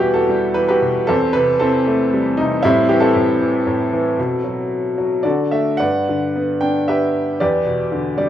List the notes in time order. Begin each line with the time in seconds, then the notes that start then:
Already playing: E2 B2 G3 B3 E4 F#4
0.00 E3 G4
0.14 F#4 A4
0.29 G3
0.54 E3 B4
0.68 F#4 G4 B4
0.82 B2
1.07 E2 C4 A4
1.33 C3 B4
1.59 E3 C4 A4
1.87 A3
2.13 G3
2.37 C3 D#4
2.63 A2 G3 C4 E4
2.89 E3 G4
3.00 C4 E4 A4
3.16 A2
3.41 E3
3.67 A2
3.93 E3
4.19 B2
4.44 F#3
4.98 F#3
5.23 D3 F#4 A4 D5
5.51 A3 E5
5.77 G2 B4 D5 F#5
6.09 D3
6.36 B3
6.61 D4 G5
6.88 G4 B4 E5
7.40 E2 G4 B4 D5
7.66 B2
7.92 D3
8.18 G3 D5